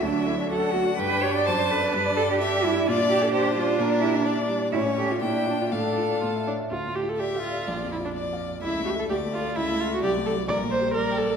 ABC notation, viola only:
X:1
M:2/4
L:1/16
Q:1/4=127
K:Glyd
V:1 name="Viola"
F,8 | D8- | D8 | [K:Dm] D8- |
D8 | ^C4 D4 | D4 F2 D2 | F2 G A G2 F2- |
F2 E D z4 | E2 G A G2 F2 | E2 F ^F G2 A2 | d2 c2 B2 A2 |]